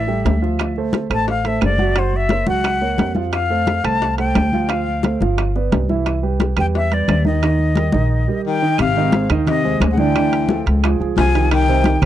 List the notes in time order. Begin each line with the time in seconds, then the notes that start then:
Already playing: A1 E5
0.07 G3 G4 A4, high bongo, high conga
0.25 D2, high bongo, low bongo, high conga, high timbale, low timbale
0.42 F3 F4 F5, high bongo
0.59 high bongo, high conga, high timbale, claves
0.76 A3 A4 C5, high conga
0.93 high bongo, high conga, high timbale, low timbale
1.10 A1 A3 A4 C5, high bongo, high conga, high timbale, claves
1.14 A5
1.28 F5, high bongo, high conga
1.44 A3 A4 C5 E5, high bongo, high conga, high timbale
1.61 F#1 D5, high bongo, low bongo, high conga, high timbale, low timbale, claves
1.78 F#3 F#4 F#5, high bongo, high conga
1.96 F#3 F#4 C5 F#5, high bongo, high conga, high timbale, claves
2.13 E5, high conga
2.29 A#3 A#4 C#5, high bongo, high conga, high timbale, low timbale
2.47 C#2 F#3 F#4 F#5, high bongo, high conga
2.64 high bongo, high conga, high timbale, claves
2.81 A#3 A#4 C#5, high bongo, high conga
2.98 F2, high bongo, low bongo, high conga, high timbale, low timbale
3.15 F3 F4 F5, high bongo, high conga
3.32 F5, high bongo, high conga, high timbale, claves
3.50 A3 A4 C5, high conga
3.67 high bongo, high conga, high timbale, low timbale
3.84 C2 A3 A4 C5 A5, high bongo, high conga, high timbale, claves
4.02 high bongo, high conga
4.18 A3 A4 C5 G5, high bongo, high conga, high timbale
4.35 D2, high bongo, low bongo, high conga, high timbale, low timbale, claves
4.53 F3 F4 F5, high bongo, high conga
4.69 F3 F4 F5, high bongo, high conga, high timbale, claves
4.87 high conga
5.03 A3 A4 C5, high bongo, high conga, high timbale, low timbale
5.21 G1 F3 F4 F5, high bongo, high conga
5.38 high bongo, high conga, high timbale, claves
5.55 B3 B4 D5, high bongo, high conga
5.72 C2, high bongo, low bongo, high conga, high timbale, low timbale
5.89 E3 E4 E5, high bongo, high conga
6.06 high bongo, high conga, high timbale, claves
6.23 G3 G4 B4, high conga
6.40 high bongo, high conga, high timbale, low timbale
6.57 E2 G3 G4 B4 G5, high bongo, high conga, high timbale, claves
6.74 E5, high bongo, high conga
6.92 G3 G4 B4 D5, high bongo, high conga, high timbale
7.08 D#2, high bongo, low bongo, high conga, high timbale, low timbale, claves
7.25 D#3 D#4 D#5, high bongo, high conga
7.42 D#3 D#4 D#5, high bongo, high conga, high timbale, claves
7.58 high conga
7.75 G3 G4 A#4, high bongo, high conga, high timbale, low timbale
7.92 A#1 D#3 D#4 D#5, high bongo, high conga
8.28 G3 G4 A#4
8.47 D#3 G5
8.62 D#3 D#4 D#5
8.78 G#1 C3 F5, high bongo, high conga, high timbale, claves
8.96 D#3 D#4 D#5, high conga
9.12 G#3 G#4 C5, high bongo, high conga, high timbale
9.30 D#2 D#3 D#4 D#5, high conga, low conga, high timbale, claves
9.47 C3 D#5, high bongo, high conga, low conga, high timbale
9.64 G#3 G#4 C5, high conga
9.80 D2, high bongo, low bongo, high conga, high timbale, low timbale, claves
9.92 C#3 F#5
9.97 D3 E3 D4 D5 G5, high conga
10.15 D3 D4 D5, high bongo, high conga, high timbale, claves
10.32 high bongo, high conga, high timbale
10.49 F3 F4 A4, high bongo, high conga
10.66 C#2, high conga, high timbale
10.83 F3 F4 G#4, high bongo, high conga, high timbale, claves
11.00 C#2 F3 F4 G#4, high bongo, high conga
11.17 C2 F3 G#5, high bongo, low bongo, high conga, high timbale, low timbale
11.35 D#3 D#4 G4, high bongo, high timbale
11.51 D#3 G5, high bongo, high conga, high timbale, claves
11.68 C3 C4 C5, high conga
11.84 D#3 D#4 G4, high bongo, high conga, high timbale
12.02 C2 C3 C4 C5, high conga, low conga, claves